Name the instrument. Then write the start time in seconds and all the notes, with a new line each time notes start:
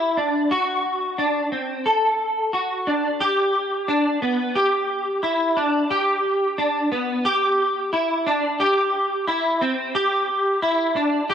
clean electric guitar
Already playing: E4
0.17 D4
0.51 F#4
1.18 D4
1.52 C4
1.86 A4
2.53 F#4
2.87 D4
3.20 G4
3.88 D4
4.22 B3
4.55 G4
5.23 E4
5.57 D4
5.91 G4
6.58 D4
6.92 B3
7.25 G4
7.93 E4
8.27 D4
8.60 G4
9.27 E4
9.61 C4
9.95 G4
10.62 E4
10.96 D4
11.30 G4